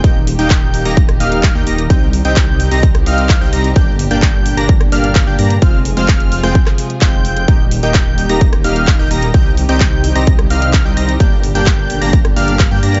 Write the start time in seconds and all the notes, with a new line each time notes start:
0.04 D#1 A#2 D#3 G3 A#3 D#4 G4 D#5 G5 G6, kick, closed hi-hat
0.27 open hi-hat
0.39 D#1 A#3 D#4 G4 D#5 G5 G6, closed hi-hat
0.50 kick, clap, closed hi-hat
0.74 open hi-hat
0.85 D#1 A#3 D#4 G4 D#5 A#5 A#6, closed hi-hat
0.97 kick, closed hi-hat
1.09 cross-stick, closed hi-hat
1.20 D#1 A#3 D#4 G4 D#5 F5 F6, open hi-hat
1.32 closed hi-hat
1.43 kick, clap, closed hi-hat
1.55 D#2 A#3 D#4 G4 D#5 G5 G6
1.67 D#1 A#3 D#4 G4 D#5 A#5 A#6, open hi-hat
1.78 closed hi-hat
1.90 C2 C3 C4 D#4 G4 D#5 G5 G6, kick, closed hi-hat
2.13 open hi-hat
2.25 C2 C4 D#4 G4 D#5 G5 G6, closed hi-hat
2.36 kick, clap, closed hi-hat
2.60 open hi-hat
2.71 C2 C4 D#4 G4 D#5 A#5 A#6, closed hi-hat
2.83 kick, closed hi-hat
2.95 cross-stick, closed hi-hat
3.06 C2 C4 D#4 G4 D#5 F5 F6, open hi-hat
3.18 closed hi-hat
3.29 kick, clap, closed hi-hat
3.41 C2 C4 D#4 G4 D#5 G5 G6
3.53 C2 C4 D#4 G4 D#5 A#5 A#6, open hi-hat
3.64 closed hi-hat
3.76 G1 A#2 D3 A#3 D4 G4 D5 G5 G6, kick, closed hi-hat
3.99 open hi-hat
4.11 G1 A#3 D4 G4 D5 G5 G6, closed hi-hat
4.22 kick, clap, closed hi-hat
4.46 open hi-hat
4.57 G1 A#3 D4 G4 D5 A#5 A#6, closed hi-hat
4.69 kick, closed hi-hat
4.81 cross-stick, closed hi-hat
4.92 G1 A#3 D4 G4 D5 F5 F6, open hi-hat
5.04 closed hi-hat
5.15 kick, clap, closed hi-hat
5.27 G1 A#3 D4 G4 D5 G5 G6
5.39 G2 A#3 D4 G4 D5 A#5 A#6, open hi-hat
5.50 closed hi-hat
5.62 F1 C3 F3 G#3 C4 F4 G#4 C5 F5 F6, kick, closed hi-hat
5.85 open hi-hat
5.97 F1 G#3 C4 F4 C5 F5 F6, closed hi-hat
6.08 kick, clap, closed hi-hat
6.20 closed hi-hat
6.32 open hi-hat
6.43 F1 G#3 C4 F4 C5 G5 G6, cross-stick, closed hi-hat
6.55 kick, closed hi-hat
6.66 cross-stick, clap, closed hi-hat
6.78 open hi-hat
6.90 closed hi-hat
7.01 F1 G#3 C4 F4 C5 G5 G6, kick, clap, closed hi-hat
7.25 open hi-hat
7.37 closed hi-hat
7.48 D#1 A#2 D#3 G3 A#3 D#4 G4 D#5 G5 G6, kick, closed hi-hat
7.71 open hi-hat
7.83 D#1 A#3 D#4 G4 D#5 G5 G6, closed hi-hat
7.94 kick, clap, closed hi-hat
8.18 open hi-hat
8.29 D#1 A#3 D#4 G4 D#5 A#5 A#6, closed hi-hat
8.41 kick, closed hi-hat
8.53 cross-stick, closed hi-hat
8.64 D#1 A#3 D#4 G4 D#5 F5 F6, open hi-hat
8.76 closed hi-hat
8.87 kick, clap, closed hi-hat
8.99 D#1 A#3 D#4 G4 D#5 G5 G6
9.11 D#1 A#3 D#4 G4 D#5 A#5 A#6, open hi-hat
9.22 closed hi-hat
9.34 C2 C3 C4 D#4 G4 D#5 G5 G6, kick, closed hi-hat
9.57 open hi-hat
9.69 C2 C4 D#4 G4 D#5 G5 G6, closed hi-hat
9.80 kick, clap, closed hi-hat
10.04 open hi-hat
10.15 C2 C4 D#4 G4 D#5 A#5 A#6, closed hi-hat
10.27 kick, closed hi-hat
10.39 cross-stick, closed hi-hat
10.50 C2 C4 D#4 G4 D#5 F5 F6, open hi-hat
10.62 closed hi-hat
10.73 kick, clap, closed hi-hat
10.85 C2 C4 D#4 G4 D#5 G5 G6
10.97 C2 C4 D#4 G4 D#5 A#5 A#6, open hi-hat
11.09 closed hi-hat
11.20 G1 A#2 D3 A#3 D4 G4 D5 G5 G6, kick, closed hi-hat
11.43 open hi-hat
11.55 G1 A#3 D4 G4 D5 G5 G6, closed hi-hat
11.66 kick, clap, closed hi-hat
11.90 open hi-hat
12.02 G1 A#3 D4 G4 D5 A#5 A#6, closed hi-hat
12.13 kick, closed hi-hat
12.25 cross-stick, closed hi-hat
12.36 G1 A#3 D4 G4 D5 F5 F6, open hi-hat
12.48 closed hi-hat
12.59 kick, clap, closed hi-hat
12.71 G2 A#3 D4 G4 D5 G5 G6
12.83 G2 A#3 D4 G4 D5 A#5 A#6, open hi-hat
12.94 closed hi-hat